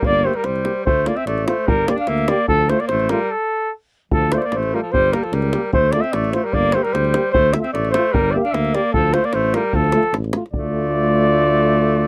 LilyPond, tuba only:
\new Staff \with { instrumentName = "Tuba" } { \clef bass \time 2/4 \key d \minor \tempo 4 = 149 g,,4 c,4 | d,4 a,,4 | g,,4 d,4 | d,4 a,,4 |
r2 | d,4 a,,4 | g,,4 cis,4 | d,4 a,,4 |
g,,4 d,4 | d,4 a,,4 | g,,4 d,4 | d,4 a,,4 |
d,4 a,,4 | d,2~ | d,2 | }